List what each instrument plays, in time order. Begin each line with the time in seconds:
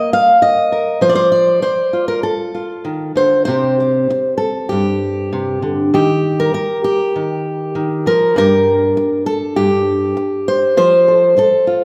Already playing: steel-string acoustic guitar A#3 A#4 D#5
0.13 steel-string acoustic guitar F5
0.42 steel-string acoustic guitar D#5, muted steel-string acoustic guitar stroke
0.72 steel-string acoustic guitar A#4
1.01 steel-string acoustic guitar F3 C5
1.09 steel-string acoustic guitar D5
1.15 steel-string acoustic guitar C5
1.32 steel-string acoustic guitar D5
1.62 steel-string acoustic guitar C5, muted steel-string acoustic guitar stroke
1.93 steel-string acoustic guitar F4
2.08 steel-string acoustic guitar A#4
2.23 steel-string acoustic guitar A4
2.55 steel-string acoustic guitar F4
2.85 steel-string acoustic guitar D#3
3.16 steel-string acoustic guitar D3 C5
3.45 steel-string acoustic guitar C3 C4 G4 C5
3.80 steel-string acoustic guitar G4
4.10 muted steel-string acoustic guitar stroke
4.38 steel-string acoustic guitar A4
4.69 steel-string acoustic guitar G2 G4
5.33 steel-string acoustic guitar C3
5.62 steel-string acoustic guitar D3
5.94 steel-string acoustic guitar D#3 G4
6.40 steel-string acoustic guitar A#4
6.54 steel-string acoustic guitar A#4, muted steel-string acoustic guitar stroke
6.84 steel-string acoustic guitar G4
7.16 steel-string acoustic guitar D#3
7.75 steel-string acoustic guitar D#3
8.06 steel-string acoustic guitar F3 A#4
8.36 steel-string acoustic guitar G2 D4 G4 A#4
8.97 muted steel-string acoustic guitar stroke
9.26 steel-string acoustic guitar A4
9.56 steel-string acoustic guitar G2 G4
10.17 muted steel-string acoustic guitar stroke
10.48 steel-string acoustic guitar C5
10.77 steel-string acoustic guitar F3 C5
11.08 steel-string acoustic guitar A4
11.37 steel-string acoustic guitar A4, muted steel-string acoustic guitar stroke
11.67 steel-string acoustic guitar F4